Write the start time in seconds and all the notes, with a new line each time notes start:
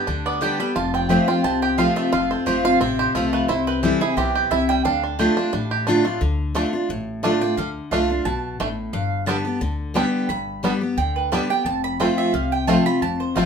Already playing: G4
0.07 D2 D3 D4
0.26 B3 D5
0.41 D3 G3 B3 G4 G5
0.59 G3 B3 G4 B5
0.76 F1 F2 F4 A5
0.94 C4 G5
1.09 F3 A3 C4 F4 G4 E5
1.28 C4 F4 G5
1.44 C2 C3 C4 A5
1.62 G4 G5
1.78 F3 A3 C4 F4 F5
1.96 A3 E5
2.12 F1 F2 F4 F5
2.31 C4 A4
2.46 G1 F3 A3 C4 F4 G4 C5
2.64 C4 F4 F5
2.80 A1 C3 C4 E5
2.99 G4 C5
3.15 B1 F3 A3 C4 F4 A4
3.33 A3 B4
3.48 C2 C3 E4 C5
3.67 C4 B4
3.83 E3 G3 C4 E4 G4 A4
4.01 C4 E4 G#4
4.16 B1 B3 C4 G4
4.35 G4
4.51 C2 C3 E4 E5
4.69 G3 G5
4.85 D2 D3 D4 F5
5.04 D4
5.19 D3 A3 D4 F4 G4
5.37 D4 F4
5.53 A1 A2 D4
5.71 G4
5.87 D3 A3 D4 F4
6.05 A3 D4 F4
6.21 D2 D3
6.55 D3 A3 D4 F4
6.73 D4 F4
6.89 A1 A2
7.23 D3 A3 D4 F4 D5
7.41 D4 F4 G5
7.57 D2 D3 F5
7.91 C2 D3 A3 D4 F4 F5
8.10 D4 F4
8.25 B1 B2 A5
8.60 A1 A2 A3 D4
8.93 G1 G2 F5
9.26 D3 G3 B3 D4 G4 A5
9.45 B3 G4
9.61 D2 D3
9.94 D3 G3 B3 D4 G4 G5
10.29 G1 G2 B5
10.63 D3 G3 B3 D4 G4
10.81 B3 G4
10.97 D2 D3 G5
11.16 B4
11.32 D3 G3 B3 D4 G4 D5
11.50 B3 G4 G5
11.65 F1 F2 A5
11.84 B5
12.00 F3 A3 C4 F4 G5
12.18 E5
12.34 C2 C3 F5
12.52 G5
12.67 F3 A3 C4 F4 A5
12.86 C4 F4 B5
13.02 F1 F2 A5
13.20 C5
13.36 G1 F3 A3 C4 F4 F5